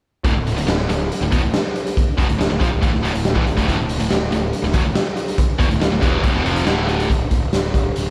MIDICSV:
0, 0, Header, 1, 4, 480
1, 0, Start_track
1, 0, Key_signature, -1, "minor"
1, 0, Tempo, 428266
1, 271, Time_signature, 4, 2, 24, 8
1, 9080, End_track
2, 0, Start_track
2, 0, Title_t, "Overdriven electric guitar"
2, 0, Program_c, 0, 29
2, 277, Note_on_c, 0, 38, 86
2, 278, Note_on_c, 0, 45, 104
2, 381, Note_off_c, 0, 38, 0
2, 383, Note_off_c, 0, 45, 0
2, 395, Note_on_c, 0, 38, 62
2, 397, Note_on_c, 0, 45, 67
2, 586, Note_off_c, 0, 38, 0
2, 587, Note_off_c, 0, 45, 0
2, 622, Note_on_c, 0, 38, 57
2, 630, Note_on_c, 0, 45, 64
2, 744, Note_off_c, 0, 38, 0
2, 751, Note_off_c, 0, 45, 0
2, 757, Note_on_c, 0, 38, 56
2, 764, Note_on_c, 0, 45, 71
2, 947, Note_off_c, 0, 38, 0
2, 951, Note_off_c, 0, 45, 0
2, 988, Note_on_c, 0, 38, 58
2, 1001, Note_on_c, 0, 45, 66
2, 1183, Note_off_c, 0, 38, 0
2, 1189, Note_off_c, 0, 45, 0
2, 1350, Note_on_c, 0, 38, 64
2, 1359, Note_on_c, 0, 45, 67
2, 1462, Note_off_c, 0, 38, 0
2, 1466, Note_on_c, 0, 40, 80
2, 1472, Note_off_c, 0, 45, 0
2, 1476, Note_on_c, 0, 47, 94
2, 1583, Note_off_c, 0, 40, 0
2, 1588, Note_off_c, 0, 47, 0
2, 1598, Note_on_c, 0, 38, 59
2, 1599, Note_on_c, 0, 45, 62
2, 1716, Note_off_c, 0, 38, 0
2, 1717, Note_off_c, 0, 45, 0
2, 2442, Note_on_c, 0, 40, 86
2, 2449, Note_on_c, 0, 47, 90
2, 2552, Note_off_c, 0, 40, 0
2, 2555, Note_off_c, 0, 47, 0
2, 2564, Note_on_c, 0, 38, 59
2, 2569, Note_on_c, 0, 45, 66
2, 2670, Note_off_c, 0, 38, 0
2, 2677, Note_off_c, 0, 45, 0
2, 2683, Note_on_c, 0, 38, 61
2, 2691, Note_on_c, 0, 45, 67
2, 2783, Note_off_c, 0, 38, 0
2, 2790, Note_off_c, 0, 45, 0
2, 2797, Note_on_c, 0, 38, 68
2, 2804, Note_on_c, 0, 45, 67
2, 2916, Note_off_c, 0, 38, 0
2, 2920, Note_off_c, 0, 45, 0
2, 2922, Note_on_c, 0, 46, 79
2, 2925, Note_on_c, 0, 53, 92
2, 3020, Note_off_c, 0, 46, 0
2, 3025, Note_on_c, 0, 38, 61
2, 3029, Note_off_c, 0, 53, 0
2, 3033, Note_on_c, 0, 45, 74
2, 3137, Note_off_c, 0, 45, 0
2, 3146, Note_off_c, 0, 38, 0
2, 3150, Note_on_c, 0, 45, 78
2, 3162, Note_on_c, 0, 52, 99
2, 3260, Note_off_c, 0, 45, 0
2, 3264, Note_on_c, 0, 38, 62
2, 3270, Note_off_c, 0, 52, 0
2, 3275, Note_on_c, 0, 45, 67
2, 3372, Note_off_c, 0, 38, 0
2, 3378, Note_off_c, 0, 45, 0
2, 3385, Note_on_c, 0, 38, 81
2, 3392, Note_on_c, 0, 45, 88
2, 3494, Note_off_c, 0, 38, 0
2, 3498, Note_off_c, 0, 45, 0
2, 3508, Note_on_c, 0, 38, 62
2, 3512, Note_on_c, 0, 45, 62
2, 3704, Note_off_c, 0, 38, 0
2, 3706, Note_off_c, 0, 45, 0
2, 3742, Note_on_c, 0, 45, 84
2, 3754, Note_on_c, 0, 52, 92
2, 3862, Note_off_c, 0, 45, 0
2, 3868, Note_off_c, 0, 52, 0
2, 3870, Note_on_c, 0, 38, 62
2, 3875, Note_on_c, 0, 45, 77
2, 3972, Note_off_c, 0, 38, 0
2, 3983, Note_off_c, 0, 45, 0
2, 3986, Note_on_c, 0, 38, 83
2, 3996, Note_on_c, 0, 45, 83
2, 4091, Note_off_c, 0, 38, 0
2, 4103, Note_off_c, 0, 45, 0
2, 4104, Note_on_c, 0, 38, 92
2, 4117, Note_on_c, 0, 45, 101
2, 4205, Note_off_c, 0, 38, 0
2, 4214, Note_off_c, 0, 45, 0
2, 4218, Note_on_c, 0, 38, 69
2, 4227, Note_on_c, 0, 45, 70
2, 4419, Note_off_c, 0, 38, 0
2, 4424, Note_off_c, 0, 45, 0
2, 4467, Note_on_c, 0, 38, 68
2, 4476, Note_on_c, 0, 45, 71
2, 4572, Note_off_c, 0, 38, 0
2, 4576, Note_off_c, 0, 45, 0
2, 4585, Note_on_c, 0, 38, 55
2, 4589, Note_on_c, 0, 45, 70
2, 4783, Note_off_c, 0, 38, 0
2, 4785, Note_off_c, 0, 45, 0
2, 4826, Note_on_c, 0, 38, 57
2, 4831, Note_on_c, 0, 45, 67
2, 5023, Note_off_c, 0, 38, 0
2, 5026, Note_off_c, 0, 45, 0
2, 5181, Note_on_c, 0, 38, 59
2, 5187, Note_on_c, 0, 45, 66
2, 5299, Note_off_c, 0, 38, 0
2, 5304, Note_on_c, 0, 40, 91
2, 5306, Note_off_c, 0, 45, 0
2, 5310, Note_on_c, 0, 47, 92
2, 5422, Note_off_c, 0, 40, 0
2, 5426, Note_off_c, 0, 47, 0
2, 5431, Note_on_c, 0, 38, 62
2, 5437, Note_on_c, 0, 45, 62
2, 5553, Note_off_c, 0, 38, 0
2, 5556, Note_off_c, 0, 45, 0
2, 6261, Note_on_c, 0, 40, 87
2, 6265, Note_on_c, 0, 47, 93
2, 6368, Note_off_c, 0, 40, 0
2, 6372, Note_on_c, 0, 38, 57
2, 6375, Note_off_c, 0, 47, 0
2, 6379, Note_on_c, 0, 45, 63
2, 6490, Note_off_c, 0, 45, 0
2, 6492, Note_off_c, 0, 38, 0
2, 6503, Note_on_c, 0, 45, 68
2, 6506, Note_on_c, 0, 38, 68
2, 6602, Note_off_c, 0, 38, 0
2, 6605, Note_off_c, 0, 45, 0
2, 6616, Note_on_c, 0, 38, 64
2, 6618, Note_on_c, 0, 45, 68
2, 6722, Note_off_c, 0, 38, 0
2, 6727, Note_on_c, 0, 40, 82
2, 6732, Note_off_c, 0, 45, 0
2, 6736, Note_on_c, 0, 47, 90
2, 6741, Note_on_c, 0, 52, 85
2, 6973, Note_off_c, 0, 40, 0
2, 6978, Note_off_c, 0, 47, 0
2, 6980, Note_off_c, 0, 52, 0
2, 6985, Note_on_c, 0, 38, 89
2, 6992, Note_on_c, 0, 45, 89
2, 7098, Note_off_c, 0, 38, 0
2, 7103, Note_on_c, 0, 40, 82
2, 7105, Note_off_c, 0, 45, 0
2, 7110, Note_on_c, 0, 47, 93
2, 7217, Note_off_c, 0, 40, 0
2, 7222, Note_on_c, 0, 41, 79
2, 7223, Note_off_c, 0, 47, 0
2, 7227, Note_on_c, 0, 48, 78
2, 7236, Note_on_c, 0, 53, 83
2, 7456, Note_off_c, 0, 41, 0
2, 7460, Note_on_c, 0, 38, 89
2, 7463, Note_off_c, 0, 48, 0
2, 7467, Note_off_c, 0, 53, 0
2, 7470, Note_on_c, 0, 45, 83
2, 7474, Note_on_c, 0, 50, 91
2, 7939, Note_off_c, 0, 38, 0
2, 7943, Note_off_c, 0, 45, 0
2, 7945, Note_off_c, 0, 50, 0
2, 9080, End_track
3, 0, Start_track
3, 0, Title_t, "Picked electric bass"
3, 0, Program_c, 1, 34
3, 271, Note_on_c, 1, 26, 84
3, 378, Note_off_c, 1, 26, 0
3, 385, Note_on_c, 1, 26, 76
3, 612, Note_off_c, 1, 26, 0
3, 632, Note_on_c, 1, 26, 73
3, 744, Note_off_c, 1, 26, 0
3, 754, Note_on_c, 1, 26, 80
3, 977, Note_off_c, 1, 26, 0
3, 1001, Note_on_c, 1, 26, 81
3, 1221, Note_off_c, 1, 26, 0
3, 1358, Note_on_c, 1, 26, 80
3, 1468, Note_off_c, 1, 26, 0
3, 1485, Note_on_c, 1, 28, 90
3, 1588, Note_off_c, 1, 28, 0
3, 1595, Note_on_c, 1, 26, 80
3, 1706, Note_off_c, 1, 26, 0
3, 2445, Note_on_c, 1, 28, 91
3, 2552, Note_off_c, 1, 28, 0
3, 2559, Note_on_c, 1, 26, 79
3, 2669, Note_off_c, 1, 26, 0
3, 2683, Note_on_c, 1, 26, 77
3, 2791, Note_off_c, 1, 26, 0
3, 2798, Note_on_c, 1, 26, 79
3, 2909, Note_off_c, 1, 26, 0
3, 2925, Note_on_c, 1, 34, 91
3, 3033, Note_off_c, 1, 34, 0
3, 3044, Note_on_c, 1, 26, 72
3, 3152, Note_off_c, 1, 26, 0
3, 3171, Note_on_c, 1, 33, 80
3, 3276, Note_off_c, 1, 33, 0
3, 3283, Note_on_c, 1, 26, 75
3, 3391, Note_off_c, 1, 26, 0
3, 3405, Note_on_c, 1, 26, 87
3, 3513, Note_off_c, 1, 26, 0
3, 3526, Note_on_c, 1, 26, 75
3, 3745, Note_off_c, 1, 26, 0
3, 3762, Note_on_c, 1, 33, 89
3, 3871, Note_off_c, 1, 33, 0
3, 3891, Note_on_c, 1, 26, 77
3, 3996, Note_off_c, 1, 26, 0
3, 4011, Note_on_c, 1, 26, 95
3, 4116, Note_off_c, 1, 26, 0
3, 4123, Note_on_c, 1, 26, 84
3, 4232, Note_off_c, 1, 26, 0
3, 4250, Note_on_c, 1, 26, 77
3, 4467, Note_off_c, 1, 26, 0
3, 4487, Note_on_c, 1, 26, 77
3, 4594, Note_off_c, 1, 26, 0
3, 4602, Note_on_c, 1, 26, 79
3, 4823, Note_off_c, 1, 26, 0
3, 4844, Note_on_c, 1, 26, 78
3, 5063, Note_off_c, 1, 26, 0
3, 5194, Note_on_c, 1, 26, 81
3, 5306, Note_off_c, 1, 26, 0
3, 5314, Note_on_c, 1, 28, 82
3, 5426, Note_off_c, 1, 28, 0
3, 5438, Note_on_c, 1, 26, 74
3, 5548, Note_off_c, 1, 26, 0
3, 6270, Note_on_c, 1, 28, 84
3, 6384, Note_off_c, 1, 28, 0
3, 6404, Note_on_c, 1, 26, 78
3, 6508, Note_off_c, 1, 26, 0
3, 6515, Note_on_c, 1, 26, 83
3, 6626, Note_off_c, 1, 26, 0
3, 6632, Note_on_c, 1, 26, 67
3, 6742, Note_off_c, 1, 26, 0
3, 6748, Note_on_c, 1, 28, 94
3, 6974, Note_off_c, 1, 28, 0
3, 6990, Note_on_c, 1, 26, 82
3, 7103, Note_off_c, 1, 26, 0
3, 7114, Note_on_c, 1, 28, 86
3, 7225, Note_off_c, 1, 28, 0
3, 7235, Note_on_c, 1, 29, 87
3, 7457, Note_off_c, 1, 29, 0
3, 7471, Note_on_c, 1, 26, 87
3, 7917, Note_off_c, 1, 26, 0
3, 7955, Note_on_c, 1, 26, 80
3, 8151, Note_off_c, 1, 26, 0
3, 8190, Note_on_c, 1, 26, 74
3, 8388, Note_off_c, 1, 26, 0
3, 8435, Note_on_c, 1, 26, 86
3, 8631, Note_off_c, 1, 26, 0
3, 8675, Note_on_c, 1, 26, 82
3, 8871, Note_off_c, 1, 26, 0
3, 8925, Note_on_c, 1, 26, 78
3, 9080, Note_off_c, 1, 26, 0
3, 9080, End_track
4, 0, Start_track
4, 0, Title_t, "Drums"
4, 275, Note_on_c, 9, 36, 90
4, 275, Note_on_c, 9, 42, 59
4, 387, Note_off_c, 9, 36, 0
4, 387, Note_off_c, 9, 42, 0
4, 523, Note_on_c, 9, 42, 70
4, 635, Note_off_c, 9, 42, 0
4, 647, Note_on_c, 9, 42, 62
4, 759, Note_off_c, 9, 42, 0
4, 767, Note_on_c, 9, 38, 112
4, 767, Note_on_c, 9, 42, 72
4, 879, Note_off_c, 9, 38, 0
4, 879, Note_off_c, 9, 42, 0
4, 1001, Note_on_c, 9, 42, 75
4, 1113, Note_off_c, 9, 42, 0
4, 1251, Note_on_c, 9, 42, 69
4, 1363, Note_off_c, 9, 42, 0
4, 1481, Note_on_c, 9, 42, 69
4, 1483, Note_on_c, 9, 36, 91
4, 1593, Note_off_c, 9, 42, 0
4, 1595, Note_off_c, 9, 36, 0
4, 1723, Note_on_c, 9, 38, 103
4, 1723, Note_on_c, 9, 42, 67
4, 1835, Note_off_c, 9, 38, 0
4, 1835, Note_off_c, 9, 42, 0
4, 1967, Note_on_c, 9, 42, 61
4, 2079, Note_off_c, 9, 42, 0
4, 2092, Note_on_c, 9, 42, 68
4, 2204, Note_off_c, 9, 42, 0
4, 2209, Note_on_c, 9, 36, 97
4, 2215, Note_on_c, 9, 42, 61
4, 2322, Note_off_c, 9, 36, 0
4, 2328, Note_off_c, 9, 42, 0
4, 2448, Note_on_c, 9, 36, 107
4, 2455, Note_on_c, 9, 42, 73
4, 2560, Note_off_c, 9, 36, 0
4, 2567, Note_off_c, 9, 42, 0
4, 2571, Note_on_c, 9, 42, 59
4, 2683, Note_off_c, 9, 42, 0
4, 2699, Note_on_c, 9, 38, 104
4, 2699, Note_on_c, 9, 42, 69
4, 2811, Note_off_c, 9, 38, 0
4, 2811, Note_off_c, 9, 42, 0
4, 2927, Note_on_c, 9, 36, 109
4, 2930, Note_on_c, 9, 42, 72
4, 3039, Note_off_c, 9, 36, 0
4, 3042, Note_off_c, 9, 42, 0
4, 3168, Note_on_c, 9, 36, 101
4, 3168, Note_on_c, 9, 42, 63
4, 3280, Note_off_c, 9, 36, 0
4, 3280, Note_off_c, 9, 42, 0
4, 3300, Note_on_c, 9, 38, 31
4, 3412, Note_off_c, 9, 38, 0
4, 3416, Note_on_c, 9, 42, 54
4, 3528, Note_off_c, 9, 42, 0
4, 3534, Note_on_c, 9, 42, 65
4, 3643, Note_off_c, 9, 42, 0
4, 3643, Note_on_c, 9, 38, 104
4, 3643, Note_on_c, 9, 42, 61
4, 3755, Note_off_c, 9, 38, 0
4, 3755, Note_off_c, 9, 42, 0
4, 3766, Note_on_c, 9, 36, 105
4, 3878, Note_off_c, 9, 36, 0
4, 3888, Note_on_c, 9, 42, 58
4, 4000, Note_off_c, 9, 42, 0
4, 4008, Note_on_c, 9, 36, 101
4, 4015, Note_on_c, 9, 42, 62
4, 4120, Note_off_c, 9, 36, 0
4, 4127, Note_off_c, 9, 42, 0
4, 4127, Note_on_c, 9, 36, 80
4, 4132, Note_on_c, 9, 42, 62
4, 4239, Note_off_c, 9, 36, 0
4, 4244, Note_off_c, 9, 42, 0
4, 4362, Note_on_c, 9, 42, 75
4, 4474, Note_off_c, 9, 42, 0
4, 4479, Note_on_c, 9, 42, 60
4, 4591, Note_off_c, 9, 42, 0
4, 4601, Note_on_c, 9, 38, 112
4, 4601, Note_on_c, 9, 42, 74
4, 4714, Note_off_c, 9, 38, 0
4, 4714, Note_off_c, 9, 42, 0
4, 4841, Note_on_c, 9, 42, 70
4, 4953, Note_off_c, 9, 42, 0
4, 5078, Note_on_c, 9, 42, 63
4, 5190, Note_off_c, 9, 42, 0
4, 5196, Note_on_c, 9, 38, 34
4, 5305, Note_on_c, 9, 42, 69
4, 5308, Note_off_c, 9, 38, 0
4, 5313, Note_on_c, 9, 36, 94
4, 5417, Note_off_c, 9, 42, 0
4, 5425, Note_off_c, 9, 36, 0
4, 5553, Note_on_c, 9, 38, 105
4, 5553, Note_on_c, 9, 42, 68
4, 5665, Note_off_c, 9, 38, 0
4, 5665, Note_off_c, 9, 42, 0
4, 5790, Note_on_c, 9, 42, 62
4, 5902, Note_off_c, 9, 42, 0
4, 5917, Note_on_c, 9, 42, 73
4, 6029, Note_off_c, 9, 42, 0
4, 6030, Note_on_c, 9, 42, 69
4, 6033, Note_on_c, 9, 36, 102
4, 6142, Note_off_c, 9, 42, 0
4, 6145, Note_off_c, 9, 36, 0
4, 6273, Note_on_c, 9, 36, 101
4, 6280, Note_on_c, 9, 42, 73
4, 6385, Note_off_c, 9, 36, 0
4, 6392, Note_off_c, 9, 42, 0
4, 6400, Note_on_c, 9, 42, 58
4, 6512, Note_off_c, 9, 42, 0
4, 6518, Note_on_c, 9, 38, 109
4, 6518, Note_on_c, 9, 42, 71
4, 6630, Note_off_c, 9, 38, 0
4, 6630, Note_off_c, 9, 42, 0
4, 6753, Note_on_c, 9, 36, 104
4, 6753, Note_on_c, 9, 42, 65
4, 6865, Note_off_c, 9, 42, 0
4, 6866, Note_off_c, 9, 36, 0
4, 6989, Note_on_c, 9, 42, 69
4, 6990, Note_on_c, 9, 36, 94
4, 7101, Note_off_c, 9, 42, 0
4, 7103, Note_off_c, 9, 36, 0
4, 7113, Note_on_c, 9, 38, 31
4, 7225, Note_off_c, 9, 38, 0
4, 7236, Note_on_c, 9, 42, 59
4, 7348, Note_off_c, 9, 42, 0
4, 7354, Note_on_c, 9, 42, 65
4, 7466, Note_off_c, 9, 42, 0
4, 7473, Note_on_c, 9, 38, 110
4, 7473, Note_on_c, 9, 42, 60
4, 7586, Note_off_c, 9, 38, 0
4, 7586, Note_off_c, 9, 42, 0
4, 7717, Note_on_c, 9, 42, 59
4, 7829, Note_off_c, 9, 42, 0
4, 7843, Note_on_c, 9, 42, 63
4, 7956, Note_off_c, 9, 42, 0
4, 7956, Note_on_c, 9, 36, 88
4, 7962, Note_on_c, 9, 42, 64
4, 8068, Note_off_c, 9, 36, 0
4, 8074, Note_off_c, 9, 42, 0
4, 8191, Note_on_c, 9, 42, 61
4, 8196, Note_on_c, 9, 36, 82
4, 8304, Note_off_c, 9, 42, 0
4, 8308, Note_off_c, 9, 36, 0
4, 8438, Note_on_c, 9, 38, 98
4, 8438, Note_on_c, 9, 42, 81
4, 8550, Note_off_c, 9, 38, 0
4, 8550, Note_off_c, 9, 42, 0
4, 8677, Note_on_c, 9, 36, 74
4, 8681, Note_on_c, 9, 42, 59
4, 8789, Note_off_c, 9, 36, 0
4, 8793, Note_off_c, 9, 42, 0
4, 8919, Note_on_c, 9, 42, 76
4, 9031, Note_off_c, 9, 42, 0
4, 9080, End_track
0, 0, End_of_file